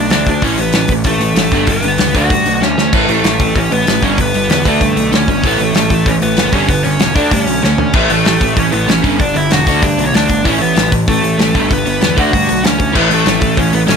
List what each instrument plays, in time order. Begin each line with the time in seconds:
Already playing: overdriven electric guitar D3, lead electric guitar D5
0.00 overdriven electric guitar A3
0.10 picked electric bass D2, overdriven electric guitar D3 A3, lead electric guitar D4 D5, snare, open hi-hat
0.26 picked electric bass D2, overdriven electric guitar D3 A3, kick, open hi-hat
0.42 picked electric bass A1, overdriven electric guitar A2 E3 A3, lead electric guitar C#4 C#5, kick, open hi-hat
0.57 picked electric bass A1, overdriven electric guitar A2 E3, lead electric guitar B3 B4, open hi-hat
0.73 picked electric bass A1, overdriven electric guitar A2 E3, snare, open hi-hat
0.88 picked electric bass A1, overdriven electric guitar A2 E3, kick, open hi-hat
1.04 picked electric bass A1, overdriven electric guitar A2 E3, lead electric guitar A3 A4, kick, open hi-hat
1.20 picked electric bass A1, overdriven electric guitar A2 E3, open hi-hat
1.34 picked electric bass A1, overdriven electric guitar A2 E3, snare, open hi-hat
1.51 picked electric bass G1, overdriven electric guitar G2 D3 G3, kick, open hi-hat
1.67 picked electric bass G1, overdriven electric guitar G2 D3, lead electric guitar B3 B4, kick, open hi-hat
1.81 picked electric bass G1, overdriven electric guitar G2 D3, open hi-hat
1.98 picked electric bass C#2, overdriven electric guitar G2 D3, snare, open hi-hat
2.15 picked electric bass D2, overdriven electric guitar D3 A3 D4, lead electric guitar F#4 F#5, kick, open hi-hat
2.30 picked electric bass G2, overdriven electric guitar D3 A3, kick, open hi-hat
2.45 picked electric bass B1, overdriven electric guitar D3 A3, open hi-hat
2.61 picked electric bass D2, overdriven electric guitar D3 A3, lead electric guitar C#4 C#5, snare
2.78 picked electric bass D2, overdriven electric guitar D3 A3, snare
2.92 picked electric bass A1, overdriven electric guitar A2 E3 A3, lead electric guitar B3 B4, kick, crash
3.08 picked electric bass A1, overdriven electric guitar A2 E3, lead electric guitar A3 A4, open hi-hat
3.24 picked electric bass A1, overdriven electric guitar A2 E3, snare, open hi-hat
3.40 picked electric bass A1, overdriven electric guitar A2 E3, kick, open hi-hat
3.56 picked electric bass A1, overdriven electric guitar A2 E3, lead electric guitar C#4 C#5, kick, open hi-hat
3.71 picked electric bass A1, overdriven electric guitar A2 E3, lead electric guitar B3 B4, open hi-hat
3.87 picked electric bass A1, overdriven electric guitar A2 E3, snare, open hi-hat
4.02 picked electric bass G1, overdriven electric guitar G2 D3 G3, lead electric guitar C#4 C#5, kick, open hi-hat
4.18 picked electric bass G1, overdriven electric guitar G2 D3, lead electric guitar B3 B4, kick, open hi-hat
4.34 picked electric bass G1, overdriven electric guitar G2 D3, open hi-hat
4.49 picked electric bass E2, overdriven electric guitar G2 D3, snare, open hi-hat
4.65 picked electric bass D2, overdriven electric guitar D3 A3 D4, lead electric guitar A3 A4, kick, open hi-hat
4.81 picked electric bass G2, overdriven electric guitar D3 A3, kick, open hi-hat
4.96 picked electric bass B1, overdriven electric guitar D3 A3, open hi-hat
5.12 picked electric bass D2, overdriven electric guitar D3 A3, lead electric guitar C#4 C#5, snare, open hi-hat
5.28 picked electric bass G1, overdriven electric guitar D3 A3, kick, open hi-hat
5.44 picked electric bass A1, overdriven electric guitar A2 E3 A3, lead electric guitar B3 B4, kick, open hi-hat
5.59 picked electric bass A1, overdriven electric guitar A2 E3, open hi-hat
5.63 lead electric guitar A3 A4
5.74 picked electric bass A1, overdriven electric guitar A2 E3, snare, open hi-hat
5.90 picked electric bass A1, overdriven electric guitar A2 E3, kick, open hi-hat
6.06 picked electric bass A1, overdriven electric guitar A2 E3, lead electric guitar C#4 C#5, kick, open hi-hat
6.22 picked electric bass A1, overdriven electric guitar A2 E3, lead electric guitar B3 B4, open hi-hat
6.37 picked electric bass F#1, overdriven electric guitar A2 E3, snare, open hi-hat
6.52 picked electric bass G1, overdriven electric guitar G2 D3 G3, lead electric guitar C#4 C#5, kick, open hi-hat
6.68 picked electric bass G1, overdriven electric guitar G2 D3, lead electric guitar B3 B4, kick, open hi-hat
6.84 picked electric bass G1, overdriven electric guitar G2 D3, lead electric guitar C#4 C#5, open hi-hat
6.99 picked electric bass E1, overdriven electric guitar G2 D3, snare, open hi-hat
7.15 picked electric bass D2, overdriven electric guitar D3 A3 D4, lead electric guitar D4 D5, kick, open hi-hat
7.31 picked electric bass G2, overdriven electric guitar D3 A3, lead electric guitar C#4 C#5, kick, open hi-hat
7.47 picked electric bass B1, overdriven electric guitar D3 A3, open hi-hat
7.62 picked electric bass D2, overdriven electric guitar D3 A3, lead electric guitar C#4 C#5, snare
7.77 picked electric bass D2, overdriven electric guitar D3 A3, floor tom
7.93 picked electric bass A1, overdriven electric guitar A2 E3 A3, lead electric guitar B3 B4, kick, crash
8.10 picked electric bass A1, overdriven electric guitar A2 E3, lead electric guitar A3 A4, open hi-hat
8.25 picked electric bass A1, overdriven electric guitar A2 E3, snare, open hi-hat
8.41 picked electric bass A1, overdriven electric guitar A2 E3, kick, open hi-hat
8.56 picked electric bass A1, overdriven electric guitar A2 E3, lead electric guitar C#4 C#5, kick, open hi-hat
8.72 picked electric bass A1, overdriven electric guitar A2 E3, lead electric guitar B3 B4, open hi-hat
8.88 picked electric bass A1, overdriven electric guitar A2 E3, lead electric guitar C#4 C#5, snare, open hi-hat
9.02 picked electric bass G1, overdriven electric guitar G2 D3 G3, kick, open hi-hat
9.20 picked electric bass G1, overdriven electric guitar G2 D3, lead electric guitar D4 D5, kick, open hi-hat
9.34 picked electric bass G1, overdriven electric guitar G2 D3, lead electric guitar E4 E5, open hi-hat
9.51 picked electric bass E1, overdriven electric guitar G2 D3, lead electric guitar F#4 F#5, snare, open hi-hat
9.67 picked electric bass D2, overdriven electric guitar D3 A3 D4, kick, open hi-hat
9.82 picked electric bass G2, overdriven electric guitar D3 A3, lead electric guitar D4 D5, kick, open hi-hat
9.98 picked electric bass B1, overdriven electric guitar D3 A3, open hi-hat
10.06 lead electric guitar C#5
10.13 picked electric bass D2, overdriven electric guitar D3 A3, lead electric guitar D4 D5, snare, open hi-hat
10.29 picked electric bass G1, overdriven electric guitar D3 A3, kick, open hi-hat
10.44 picked electric bass A1, overdriven electric guitar A2 E3 A3, lead electric guitar C#4 C#5, kick, open hi-hat
10.59 picked electric bass A1, overdriven electric guitar A2 E3, lead electric guitar B3 B4, open hi-hat
10.76 picked electric bass A1, overdriven electric guitar A2 E3, snare, open hi-hat
10.92 picked electric bass A1, overdriven electric guitar A2 E3, kick, open hi-hat
11.08 picked electric bass A1, overdriven electric guitar A2 E3, lead electric guitar A3 A4, kick, open hi-hat
11.23 picked electric bass A1, overdriven electric guitar A2 E3, open hi-hat
11.38 picked electric bass A1, overdriven electric guitar A2 E3, snare, open hi-hat
11.54 picked electric bass G1, overdriven electric guitar G2 D3 G3, kick, open hi-hat
11.70 picked electric bass G1, overdriven electric guitar G2 D3, lead electric guitar B3 B4, kick, open hi-hat
11.85 picked electric bass G1, overdriven electric guitar G2 D3, open hi-hat
12.01 picked electric bass E2, overdriven electric guitar G2 D3, snare, open hi-hat
12.17 picked electric bass D2, overdriven electric guitar D3 A3 D4, lead electric guitar F#4 F#5, kick, open hi-hat
12.31 picked electric bass G2, overdriven electric guitar D3 A3, kick, open hi-hat
12.47 picked electric bass B1, overdriven electric guitar D3 A3, open hi-hat
12.64 picked electric bass D2, overdriven electric guitar D3 A3, lead electric guitar C#4 C#5, snare, open hi-hat
12.79 picked electric bass D2, overdriven electric guitar D3 A3, kick, open hi-hat
12.93 picked electric bass A1, overdriven electric guitar A2 E3 A3, kick, crash
12.97 lead electric guitar B3 B4
13.10 picked electric bass A1, overdriven electric guitar A2 E3, lead electric guitar A3 A4, open hi-hat
13.26 picked electric bass A1, overdriven electric guitar A2 E3, snare, open hi-hat
13.41 picked electric bass A1, overdriven electric guitar A2 E3, kick, open hi-hat
13.57 picked electric bass A1, overdriven electric guitar A2 E3, lead electric guitar C#4 C#5, kick, open hi-hat
13.73 picked electric bass A1, overdriven electric guitar A2 E3, lead electric guitar B3 B4, open hi-hat
13.87 picked electric bass A1, overdriven electric guitar A2 E3, lead electric guitar C#4 C#5, snare, open hi-hat